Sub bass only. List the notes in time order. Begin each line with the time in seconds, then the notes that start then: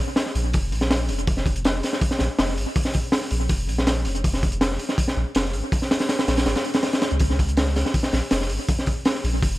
0.35 A#1
0.54 F1
0.72 A#1
1.09 F1
2.20 A#1
2.39 F1
2.57 G#1
3.31 A#1
3.50 F1
3.68 A#1
4.05 F1
5.17 A#1
5.35 F1
5.54 G#1
6.28 A#1
6.46 G#1
7.12 C#2
8.13 A#1
8.31 F1
8.50 G#1
9.24 A#1
9.43 F1